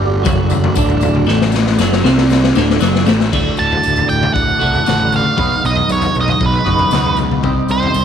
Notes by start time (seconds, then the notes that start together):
Already playing: G1 G2 G3 A3 F#4 D5
0.23 F#1 F#2 F#3, kick, floor tom, tambourine
0.50 floor tom, tambourine
0.64 floor tom, mid tom
0.75 D1 D2 D3, kick, tambourine
0.90 floor tom
1.01 floor tom, tambourine
1.15 mid tom
1.26 A1 A2 A3, snare, tambourine
1.42 snare
1.52 snare, tambourine
1.67 snare
1.78 F#1 F#2 F#3, snare, tambourine
1.93 snare
2.03 C2 C3 C4, snare, tambourine
2.18 snare
2.30 snare, tambourine
2.44 snare
2.55 D1 D2 D3, snare, tambourine
2.70 snare
2.79 F#1 F#2 F#3, snare, tambourine
2.95 snare
3.05 A1 A2 A3, snare, tambourine
3.21 snare
3.31 D1 D2 A2 D3 A3 F#4 D5, kick, floor tom, crash, tambourine
3.57 D1 A5, tambourine
3.70 floor tom, tambourine
3.83 D1, tambourine
3.96 floor tom, tambourine
4.09 D1 G5, tambourine
4.22 floor tom, mid tom, tambourine
4.34 D1 F#5, kick, tambourine
4.48 tambourine
4.59 C2 D2 A2 D3 A3 F#4, kick, tambourine
4.73 floor tom, tambourine
4.85 A1 D2 A2 D3 A3 F#4, snare, mid tom, tambourine
5.00 floor tom
5.12 F5, mid tom, tambourine
5.24 mid tom
5.36 B1 B2 F#3 G#3 B3 D#4 F#4 B4, kick, floor tom, tambourine
5.65 B1 D#5, tambourine
5.75 floor tom
5.89 B1 C#5, tambourine
6.02 floor tom, tambourine
6.14 B1, tambourine
6.21 D#5
6.28 floor tom, mid tom, tambourine
6.40 B1, kick, tambourine
6.46 B4
6.54 tambourine
6.65 F#1 B2 F#3 B3 D#4 F#4 B4, kick, tambourine
6.78 floor tom, tambourine
6.91 C#2 B2 F#3 B3 D#4 F#4 B4, snare, mid tom, tambourine
7.06 floor tom
7.17 mid tom, tambourine
7.31 mid tom
7.43 C2 C3 G3 C4 D#4 G4 C5 D#5, kick, floor tom, tambourine
7.68 C2 C5, tambourine
7.82 floor tom, tambourine
7.94 C2, tambourine